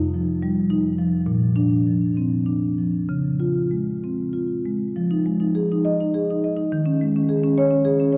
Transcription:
Already playing: F2 D#4
0.14 F3
0.42 G3
0.70 D#4
0.98 F3
1.26 A#2
1.56 D4
1.87 F3
2.17 C4
2.46 D4
2.78 F3
3.09 C#3
3.40 F4
3.71 G#3
4.04 C4
4.33 F4
4.65 G#3
4.96 F3
5.11 D#4
5.26 G#3
5.40 D#4
5.55 G#4
5.72 D#4
5.85 D#5
6.01 D#4
6.14 G#4
6.30 D#4
6.44 D#5
6.56 D#4
6.72 D#3
6.86 C#4
7.01 G#3
7.16 C#4
7.29 G#4
7.43 C#4
7.58 C#5
7.71 C#4
7.85 G#4
8.00 C#4
8.12 C#5

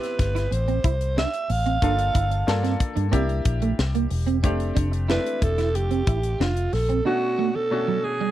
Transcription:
Already playing: B3 C4 E4 G4 B4
0.04 snare, closed hi-hat
0.19 G1, muted clean electric guitar stroke, kick, snare, closed hi-hat
0.35 E4, snare, closed hi-hat
0.51 A1 C5, muted clean electric guitar stroke, closed hi-hat
0.68 C4, closed hi-hat
0.84 C2 E4, kick, closed hi-hat
1.01 closed hi-hat
1.17 D4 E5, snare
1.34 closed hi-hat
1.50 A1 F5, muted clean electric guitar stroke, open hi-hat
1.66 C4, closed hi-hat
1.82 G1 A#3 D4 F4 A4, kick, closed hi-hat
1.99 closed hi-hat
2.14 G1 E4, kick, closed hi-hat
2.31 muted clean electric guitar stroke, closed hi-hat
2.47 G2 A#3 D4 F4 A4, snare
2.63 C4, snare, closed hi-hat
2.79 muted clean electric guitar stroke, kick, closed hi-hat
2.96 G2 D4, closed hi-hat
3.11 C2 A#3 C4 D4 E4 G4, kick, closed hi-hat
3.29 muted clean electric guitar stroke, closed hi-hat
3.45 A#1, kick, closed hi-hat
3.62 A3, closed hi-hat
3.79 C2, snare
3.95 A#3, closed hi-hat
4.10 E1, muted clean electric guitar stroke, open hi-hat
4.27 C4, closed hi-hat
4.43 F1 A3 C4 D4 G4, kick, closed hi-hat
4.60 closed hi-hat
4.75 F1 D4, kick, closed hi-hat
4.91 muted clean electric guitar stroke, closed hi-hat
5.08 A3 C4 D4 E4 B4, snare
5.26 closed hi-hat
5.42 E1 A4, muted clean electric guitar stroke, kick, closed hi-hat
5.58 E4, snare, closed hi-hat
5.75 F1 G4, muted clean electric guitar stroke, closed hi-hat
5.91 C4, closed hi-hat
6.07 A1 E4, kick, closed hi-hat
6.23 closed hi-hat
6.40 F1 D4 F4, snare
6.57 closed hi-hat
6.73 A#1 A4, muted clean electric guitar stroke, snare, open hi-hat
6.89 C4, closed hi-hat
7.05 B2 A3 C#4 D4 F#4
7.38 A3
7.55 A4, muted clean electric guitar stroke
7.71 B2 A3 C#4 D4 F#4
7.88 F#3
8.04 G#4, muted clean electric guitar stroke
8.20 G3

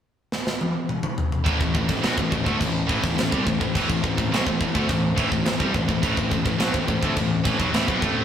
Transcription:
0.32 snare
0.47 snare
0.61 high tom
0.89 mid tom
1.03 mid tom
1.18 floor tom
1.32 floor tom
1.46 A1 A2 E3 A3 C4 A4 C5, kick, crash
1.60 A1 A2 E3, kick
1.75 A1 A2 E3, kick
1.89 A1 A2 E3, kick, snare
2.03 B1 B2 F#3, snare, crash
2.18 A1 A2 E3, kick
2.32 A1 A2 E3, kick
2.46 D2 D3 A3, kick
2.61 A1 A2 E3, kick, crash
2.89 A1 A2 E3, kick
3.03 A1 A2 E3, kick, snare
3.17 A1 A2 E3, snare, crash
3.31 C2 C3 G3, kick
3.47 A1 A2 E3, kick
3.60 A1 A2 E3, kick
3.75 A1 A2 E3, kick, crash
3.89 A1 A2 E3, kick
4.03 A1 A2 E3, kick
4.18 A1 A2 E3, kick
4.32 B1 B2 F#3, snare, crash
4.47 A1 A2 E3, kick
4.61 A1 A2 E3, kick
4.73 D2 D3 A3, kick
4.89 A1 A2 E3, kick, crash
5.15 A1 A2 E3, kick
5.31 A1 A2 E3, kick
5.45 A1 A2 E3, snare, crash
5.60 C2 C3 G3, kick
5.74 A1 A2 E3, kick
5.88 A1 A2 E3, kick
6.03 A1 A2 E3 G4, kick, crash
6.17 A1 A2 E3, kick
6.31 A1 A2 E3, kick
6.45 A1 A2 E3, kick
6.59 B1 B2 F#3, snare, crash
6.74 A1 A2 E3, kick
6.88 A1 A2 E3, kick
7.02 D2 D3 A3, kick
7.16 A1 A2 E3, kick, crash
7.45 A1 A2 E3, kick
7.59 B1 B2 F#3, kick
7.72 A1 A2 E3, snare, crash
7.87 B1 B2 F#3, kick
8.02 A1 A2 E3 A3, kick

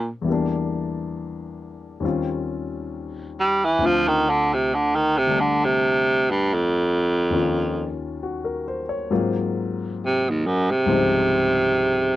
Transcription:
Already playing: A#2 F3 A3 C4 D4
0.22 E2 E3
0.26 G3 A#3
0.32 D4
2.00 D#2 D#3 G3 C4
2.04 C#4 F4
3.40 G3
3.65 E3
3.79 D2 D3 A3
3.83 F3 C4 F4
4.08 D#3
4.30 D3
4.54 C3
4.74 D3
4.96 D#3
5.17 C3
5.27 D3 G3 A3 D4
5.40 D3
5.65 C3
6.31 G2
6.54 F2
7.30 D#2 D#3 A#3
7.34 C#4 F4
8.23 F#4
8.45 A#4
8.68 C5
8.89 C#5
9.11 G#2 F#3 A#3 C4 F4
10.06 C3
10.30 D#2
10.47 F#2
10.71 C3
10.86 C#2 G#2 F3 G3 C4
10.91 D#4

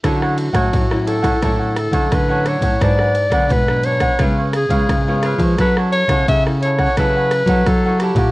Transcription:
0.04 D3 F#3 C#4 D4 E4 F#4 A4 C#5 F#5, kick, cross-stick, ride
0.22 A4 C#5 F#5, cross-stick
0.38 muted cavaquinho stroke, ride
0.53 A2 F#3 C#4 E4 A4 C#5 F#5, kick, cross-stick, ride
0.73 A2, kick, ride
0.91 F#3 C#4 E4, cross-stick
1.06 D4 A4 C#5 F#5, ride
1.22 F#3 C#4 E4 A4 C#5 F#5, kick, cross-stick, ride
1.41 A2 D3 F#3 C#4 D4 E4 A4 C#5 F#5, kick, cross-stick, ride
1.59 A4 C#5 F#5
1.76 A4, muted cavaquinho stroke, cross-stick, ride
1.92 D3 F#3 C#4 E4 A4 C#5 F#5, kick, ride
2.11 A2 D3 B4, kick, cross-stick, ride
2.28 F#3 C#4 E4 A4 C#5 F#5
2.45 D4 A4 C#5 F#5, cross-stick, ride
2.61 A2 C#5 F#5, kick, ride
2.65 A4
2.80 G#2 F#3 B3 D4 G#4 B4 D5, kick, cross-stick, ride
2.84 F#5
2.99 G#4 B4 F#5, cross-stick
3.15 muted cavaquinho stroke, ride
3.30 D3 F#3 B3 D4 F#5, kick, cross-stick, ride
3.35 G#4 B4
3.50 G#2 B2 B4, kick, ride
3.68 F#3 B3 D4, cross-stick
3.84 D4 G#4 B4 C#5 F#5, ride
4.00 G#4 B4 F#5, kick, cross-stick, ride
4.19 C#3 G#3 B3 F4 B4 C#5 F5, kick, cross-stick, ride
4.38 B4 C#5 F5
4.53 G#4, muted cavaquinho stroke, cross-stick, ride
4.69 C#3 G#3 B3 F4 B4 C#5 F5, kick, ride
4.89 G#2 C#3, kick, cross-stick, ride
5.08 G#3 B3 F4 B4 C#5 F5
5.23 F4 B4 C#5 F5, cross-stick, ride
5.38 F3 F5, kick, ride
5.42 B4 C#5
5.58 F#3 C#4 E4 A4 B4 C#5 F#5, kick, cross-stick, ride
5.77 A4 C#5 F#5, cross-stick
5.92 C#5, muted cavaquinho stroke, ride
6.08 C#3 C#4 E4 A4 C#5 F#5, kick, cross-stick, ride
6.28 C#3 E5, kick, ride
6.46 C#4 E4 A4, cross-stick
6.62 E4 A4 C#5, ride
6.66 C#5 F#5
6.78 A4 C#5 F#5, kick, cross-stick, ride
6.97 C#3 F#3 C#4 E4 A4 B4 C#5 F#5, kick, cross-stick, ride
7.16 A4 C#5 F#5
7.31 cross-stick, ride
7.46 F#3 C#4 E4 A4 C#5 F#5, kick, ride
7.50 A4
7.66 C#3 F#3 A4, kick, cross-stick, ride
7.86 C#4 E4 A4 C#5 F#5
8.00 E4 G4 A4 C#5 F#5, cross-stick, ride
8.15 A#2 C#5 F#5, kick, ride
8.19 A4

